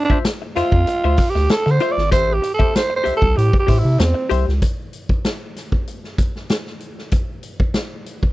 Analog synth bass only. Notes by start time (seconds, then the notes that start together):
0.10 F2
0.57 F2
0.72 F2
1.04 D2
1.35 D2
1.67 D3
1.98 G#1
2.12 A1
2.60 C2
3.06 C2
3.22 C2
3.38 A2
3.69 A2
3.85 C3
4.00 E2
4.31 C2
4.48 C#2